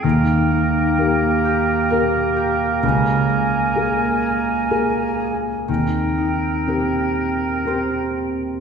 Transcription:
<<
  \new Staff \with { instrumentName = "Flute" } { \time 3/4 \key c \phrygian \tempo 4 = 63 g''2. | aes''2~ aes''8 r8 | g''2~ g''8 r8 | }
  \new Staff \with { instrumentName = "Oboe" } { \time 3/4 \key c \phrygian bes'2.~ | bes'2~ bes'8 r8 | bes'2~ bes'8 r8 | }
  \new Staff \with { instrumentName = "Grand piano" } { \time 3/4 \key c \phrygian ees,4 <bes g' bes'>4 <bes g' bes'>4 | des,4 <bes aes' bes'>4 <bes aes' bes'>4 | ees,4 <c' g' bes'>4 <c' g' bes'>4 | }
  \new Staff \with { instrumentName = "Harp" } { \time 3/4 \key c \phrygian <ees g''>8 ees'8 bes8 g'8 bes'8 g'8 | des8 aes8 bes8 aes'8 bes'8 aes'8 | ees8 ees'8 bes4 c''4 | }
  \new Staff \with { instrumentName = "Clarinet" } { \time 3/4 \key c \phrygian bes2.~ | bes2~ bes8 r8 | c'2~ c'8 r8 | }
>>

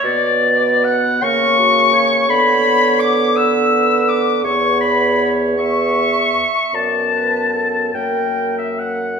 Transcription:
<<
  \new Staff \with { instrumentName = "Flute" } { \time 6/8 \key b \minor \tempo 4. = 52 d''4 fis''8 cis'''4. | b''4 d'''8 e'''4 d'''8 | cis'''8 b''8. r16 cis'''4. | a''4. g''8. e''16 fis''8 | }
  \new Staff \with { instrumentName = "Oboe" } { \time 6/8 \key b \minor d''4 fis''8 cis'''4. | b''4 d'''8 e'''4 d'''8 | cis'''8 b''8. r16 cis'''4. | a''4. g''8. e''16 fis''8 | }
  \new Staff \with { instrumentName = "Clarinet" } { \time 6/8 \key b \minor cis''4 r8 ais'8 fis'8 cis''8~ | cis''4. b'4. | cis''4. e''4. | d''8 b'8 a'8 ais'4 r8 | }
  \new Staff \with { instrumentName = "French horn" } { \time 6/8 \key b \minor b4. ais4. | b2. | b4. b4 r8 | b4. ais4. | }
  \new Staff \with { instrumentName = "Bassoon" } { \clef bass \time 6/8 \key b \minor b,4. cis4. | d2. | e,2~ e,8 r8 | fis,4. fis,4. | }
>>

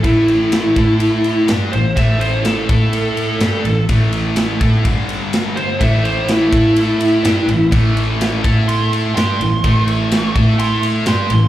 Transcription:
<<
  \new Staff \with { instrumentName = "Lead electric guitar" } { \time 4/4 \key g \lydian \tempo 4 = 125 e'2. r8 c''8 | e''8 c''8 a'2. | r2. r8 c''8 | e''8 c''8 e'2. |
r2 c'''8 r8 c'''4~ | c'''8 cis'''4 r8 c'''8 r8 c'''4 | }
  \new Staff \with { instrumentName = "Distorted electric guitar" } { \time 4/4 \key g \lydian <a, e a>4. <a e' a'>4. <g d' g'>8 <a, e>8 | <a, e a>4. <a e' a'>4. <g d' g'>8 <a, e>8 | <a, e a>4. <a e' a'>8 <g, d g>2 | <a, e a>4. <a e' a'>4. <g d' g'>8 <a, e>8 |
<a, e a>4. <a e' a'>4. <g d' g'>8 <a, e>8 | <a, e a>4. <a e' a'>4. <g d' g'>8 <a, e>8 | }
  \new Staff \with { instrumentName = "Distorted electric guitar" } { \time 4/4 \key g \lydian r1 | r1 | r1 | <a, e a>4. <a e' a'>4. <g d' g'>8 <a, e>8 |
<a, e a>4. <a e' a'>4. <g d' g'>8 <a, e>8 | <a, e a>4. <a e' a'>4. <g d' g'>8 <a, e>8 | }
  \new Staff \with { instrumentName = "Overdriven electric guitar" } { \time 4/4 \key g \lydian <a, e a>4. <a e' a'>4. <g d' g'>8 <a, e>8 | <a, e a>4. <a e' a'>4. <g d' g'>8 <a, e>8 | <a, e a>4. <a e' a'>8 <g, d g>2 | <a, e a>4. <a e' a'>4. <g d' g'>8 <a, e>8 |
<a, e a>4. <a e' a'>4. <g d' g'>8 <a, e>8 | <a, e a>4. <a e' a'>4. <g d' g'>8 <a, e>8 | }
  \new Staff \with { instrumentName = "Double bass" } { \clef bass \time 4/4 \key g \lydian a,,4. a,4. g,8 a,,8 | a,,4. a,4. g,8 a,,8 | a,,4. a,8 g,,2 | a,,4. a,4. g,8 a,,8 |
a,,4. a,4. g,8 a,,8 | a,,4. a,4. g,8 a,,8 | }
  \new DrumStaff \with { instrumentName = "Drums" } \drummode { \time 4/4 <bd cymr>8 cymr8 <cymr sn>8 <bd cymr>8 cymr8 cymr8 <cymr sn>8 cymr8 | <bd cymr>8 cymr8 <cymr sn>8 <bd cymr>8 cymr8 cymr8 <cymr sn>8 cymr8 | <bd cymr>8 cymr8 <cymr sn>8 <bd cymr>8 <bd cymr>8 cymr8 <cymr sn>8 cymr8 | <bd cymr>8 cymr8 <cymr sn>8 <bd cymr>8 cymr8 cymr8 <cymr sn>8 cymr8 |
<bd cymr>8 cymr8 <cymr sn>8 <bd cymr>8 cymr8 cymr8 <cymr sn>8 cymr8 | <bd cymr>8 cymr8 <cymr sn>8 <bd cymr>8 cymr8 cymr8 <cymr sn>8 cymr8 | }
>>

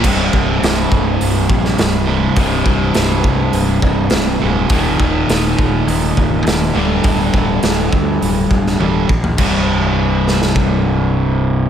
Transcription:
<<
  \new Staff \with { instrumentName = "Overdriven electric guitar" } { \clef bass \time 4/4 \key c \minor \tempo 4 = 102 <c, g, c>1 | <c, g, c>1 | <ees, bes, ees>2.~ <ees, bes, ees>8 <g, d g>8~ | <g, d g>2.~ <g, d g>8 r8 |
<c, g, c>1 | }
  \new Staff \with { instrumentName = "Overdriven electric guitar" } { \clef bass \time 4/4 \key c \minor <c, g, c>2.~ <c, g, c>8 <c, g, c>8 | <c, g, c>2.~ <c, g, c>8 <c, g, c>8 | <ees, bes, ees>2.~ <ees, bes, ees>8 <g, d g>8~ | <g, d g>2. <g, d g>8 r8 |
<c, g, c>1 | }
  \new Staff \with { instrumentName = "Fingered electric bass" } { \clef bass \time 4/4 \key c \minor c,,8 c,,8 c,,8 c,,8 c,,8 bes,,8 c,,4 | c,,8 c,,8 c,,8 c,8 c,,8 c,,8 c,,8 d,,8 | ees,,8 ees,,8 ees,,8 ees,,8 ees,,8 c,,8 ees,,8 d,,8 | d,,8 d,,8 d,,8 d,8 d,,8 d,,8 d,,8 bes,,8 |
c,,1 | }
  \new DrumStaff \with { instrumentName = "Drums" } \drummode { \time 4/4 <cymc bd>8 bd8 <hho sn>8 bd8 hho8 bd16 sn16 <hho sn>4 | <hho bd>8 bd8 <hho sn>8 bd8 hho8 bd8 <hho sn>4 | <hho bd>8 bd8 <hho sn>8 bd8 hho8 bd8 <hho sn>4 | <hho bd>8 bd8 <hho sn>8 bd8 hho8 bd16 sn16 tommh8 bd16 tomfh16 |
<cymc bd>4 r8 sn16 sn16 bd4 r4 | }
>>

